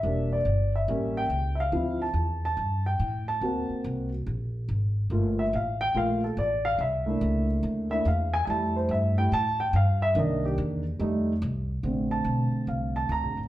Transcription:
X:1
M:4/4
L:1/8
Q:"Swing" 1/4=142
K:F
V:1 name="Grand piano"
e d2 e2 g2 [ef]- | [ef] a2 a2 g2 a- | a2 z6 | z e f g f A d f |
e3 z2 e f _a | [_a=a] c e g a g f e | _e G z6 | [K:Bb] z a3 f a b z |]
V:2 name="Grand piano"
[G,B,D] z3 [G,B,^C] z3 | [F,CE] z6 z | [B,C^F]3 z4 z | [A,B,F] z3 [A,B,F] z3 |
z [A,B,DE]4 [A,B,DE] z2 | [G,A,E]3 [G,A,E] z4 | [_E,B,D]3 z [G,A,_E] z3 | [K:Bb] [D,A,C]8 |]
V:3 name="Upright bass" clef=bass
E,,,2 G,,,2 A,,,2 ^C,,2 | D,,2 E,,2 G,,2 A,,2 | D,, z C,,2 B,,,2 _A,,,2 | G,,,2 A,,,2 B,,,2 A,,,2 |
C,,2 _D,,2 =D,,2 E,,2 | F,,2 G,,2 A,,2 G,,2 | C,,2 E,,2 F,,2 C,,2 | [K:Bb] B,,,2 _C,, z =C,,2 (3D,, B,,, A,,, |]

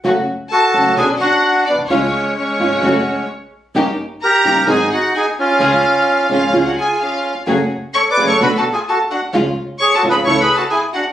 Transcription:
X:1
M:4/4
L:1/16
Q:1/4=129
K:F#m
V:1 name="Violin section"
z4 a4 g2 f4 d2 | c4 c8 z4 | z4 ^a4 g2 f2 g2 ^e2- | ^e6 e3 f g2 e3 z |
z4 (3c'2 d'2 c'2 (3b2 a2 g2 a2 f2 | z4 (3c'2 a2 b2 (3c'2 b2 a2 g2 f2 |]
V:2 name="Bandoneon"
z4 [FA]4 [DG]2 [DF]4 [B,D]2 | [G,C]4 [G,C]8 z4 | z4 [=G^A]4 [^D^G]2 [DF]2 [DG]2 [C^E]2- | [C^E]6 [CE]3 [DF] [EG]2 [CE]3 z |
z4 (3[Ac]2 [Bd]2 [Ac]2 (3[FB]2 [FA]2 [^EG]2 [FA]2 [DF]2 | z4 (3[Gc]2 [FA]2 [GB]2 (3[Ac]2 [GB]2 [FA]2 [EG]2 [DF]2 |]
V:3 name="String section"
[A,CF]2 z4 [A,CF]2 [B,CD]2 z6 | [G,C^E]2 z4 [G,CE]2 [A,CF]2 z6 | [C^D=G]2 z4 [CDG]2 [^B,F^G]2 z6 | [C^EG]2 z4 [CEG]2 [CEG]2 z6 |
[A,FG]2 z4 [A,FG]2 [B,DA]2 z6 | [G,C^E]2 z4 [G,CE]2 [A,C=E]2 z6 |]
V:4 name="Nylon-string guitar"
[C,F,A,CF]2 z4 [C,F,A,CF]2 [B,,D,B,CF]2 z6 | [C,^E,G,C^E]2 z4 [C,E,G,CE]2 [C,F,A,CF]2 z6 | [C,=G,^A,^D=G]2 z4 [C,G,A,DG]2 [^D,F,^B,D^G]2 z6 | [C,^E,G,C^E]2 z4 [C,E,G,CE]2 [C,E,G,CE]2 z6 |
[C,F,A,CG]2 z4 [C,F,A,CG]2 [B,,D,A,B,F]2 z6 | [C,^E,G,C^E]2 z4 [C,E,G,CE]2 [C,=E,A,C=E]2 z6 |]
V:5 name="Upright bass" clef=bass
F,,,3/2 z4 z/2 C,,3/2 z/2 B,,,3/2 z4 z ^A,,,/2 B,,,/2 ^B,,,/2 | C,,3/2 z4 z/2 G,,,3/2 z/2 F,,,3/2 z6 z/2 | =G,,,3/2 z4 z/2 G,,,3/2 z/2 ^G,,,3/2 z6 z/2 | C,,3/2 z4 z/2 G,,,3/2 z/2 C,,3/2 z6 z/2 |
F,,,3/2 z4 z/2 C,,3/2 z/2 B,,,3/2 z6 z/2 | C,,3/2 z4 z/2 G,,,3/2 z/2 C,,3/2 z6 z/2 |]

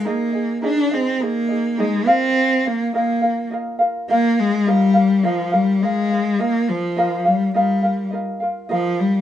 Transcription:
X:1
M:4/4
L:1/8
Q:1/4=104
K:Ablyd
V:1 name="Ukulele"
[EABe] [EAe] [EABe] [EAe] [EABe] [EAe] [EABe] [FBef]- | [FBef] [FBf] [FBef] [FBf] [FBef] [FBf] [FBef]2 | [FBef] [FBf] [FBef] [FBf] [FBef] [FBf] [FBef]2 | [FBef] [FBf] [FBef] [FBf] [FBef] [FBf] [FBef]2 |]
V:2 name="Cello" clef=bass
B,2 D C B,2 A, C- | C B, B,2 z2 B, A, | G,2 F, G, A,2 B, F,- | F, G, G,2 z2 F, G, |]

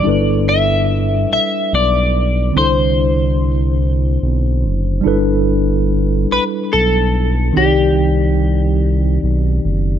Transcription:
X:1
M:6/8
L:1/8
Q:3/8=48
K:G
V:1 name="Clean electric guitar"
d e2 e d2 | c3 z3 | z3 B A2 | G4 z2 |]
V:2 name="Tine electric piano"
[G,DEAB]6 | [D,CDEAc]6 | [G,DEAB]6 | [_E,C_EG^cd]6 |]
V:3 name="Analog synth bass" clef=bass
G,,,3 B,,, B,,,2 | C,,4 B,,, F,,, | G,,,3 B,,, B,,,2 | C,,4 B,,, F,,, |]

